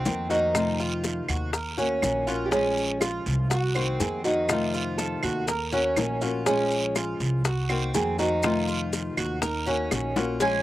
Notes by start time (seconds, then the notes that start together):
Already playing: C4
0.05 F2 D#3 A#3 C4 F#4, high bongo, low bongo, short guiro, maracas
0.30 D#3 A#3 C4 D#4 F#4, high bongo, short guiro, maracas
0.54 C3 D#3 A3 C4 F4, high bongo, long guiro, claves, maracas
0.79 F4, high bongo, maracas
1.04 high bongo, short guiro, maracas
1.28 D#2 F#4, short guiro, claves, maracas
1.53 A#4, muted nylon-string guitar stroke, high bongo, long guiro, maracas
1.78 A#3 C#4 F#4, high bongo, maracas
2.02 A#1 D#3 A#3 C#4 F#4, high bongo, low bongo, short guiro, claves, maracas
2.27 A#3 C#4 F4 F#4, high bongo, short guiro, maracas
2.46 G4
2.51 F3 G#3 C#4 F4 G#4, high bongo, long guiro, maracas
2.77 high bongo, maracas
3.01 F4, high bongo, short guiro, claves, maracas
3.26 C2, short guiro, maracas
3.50 F#4, muted nylon-string guitar stroke, high bongo, long guiro, maracas
3.75 D#3 A#3 C4 F#4, high bongo, claves, maracas
4.00 F2 D#3 A#3 C4 F#4 G#4, high bongo, low bongo, short guiro, maracas
4.24 D#3 A#3 C4 D#4 F#4, high bongo, short guiro, maracas
4.49 C3 D#3 A3 C4 F4, high bongo, long guiro, claves, maracas
4.74 F4, high bongo, maracas
4.98 A4, high bongo, short guiro, maracas
5.23 D#2 F#4, short guiro, claves, maracas
5.47 A#4, muted nylon-string guitar stroke, high bongo, long guiro, maracas
5.72 A#3 C#4 F#4, high bongo, maracas
5.96 A#1 D#3 A#3 C#4 F#4, high bongo, low bongo, short guiro, claves, maracas
6.21 A#3 C#4 F4 F#4, high bongo, short guiro, maracas
6.46 F3 G#3 C#4 F4 G#4, high bongo, long guiro, maracas
6.71 high bongo, maracas
6.95 F4, high bongo, short guiro, claves, maracas
7.20 C2, short guiro, maracas
7.45 F#4, muted nylon-string guitar stroke, high bongo, long guiro, maracas
7.69 D#3 A#3 C4 F#4, high bongo, claves, maracas
7.94 F2 D#3 A#3 C4 F#4 G#4, high bongo, low bongo, short guiro, maracas
8.19 D#3 A#3 C4 D#4 F#4, high bongo, short guiro, maracas
8.43 C3 D#3 A3 C4 F4, high bongo, long guiro, claves, maracas
8.68 F4, high bongo, maracas
8.93 high bongo, short guiro, maracas
9.17 D#2 F#4, short guiro, claves, maracas
9.42 D#4 A#4, muted nylon-string guitar stroke, high bongo, long guiro, maracas
9.66 A#3 C#4 F#4, high bongo, maracas
9.91 A#1 D#3 A#3 C#4 F#4, high bongo, short guiro, claves, maracas
10.16 A#3 C#4 F4 F#4, low bongo, short guiro, maracas
10.40 F3 G#3 C#4 F4 G#5, cowbell, long guiro, maracas